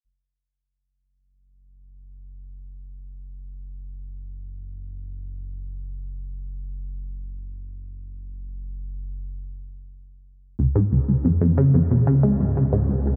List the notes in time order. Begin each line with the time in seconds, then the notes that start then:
0.04 F#1
10.59 C#2
10.75 G#2
10.92 C#2
11.08 C#2
11.25 F2
11.41 F2
11.58 C#3
11.74 F2
11.91 B2
12.07 C#3
12.23 G#3
12.40 G#2
12.57 C#2
12.73 G#2
12.89 C#2
13.06 C#2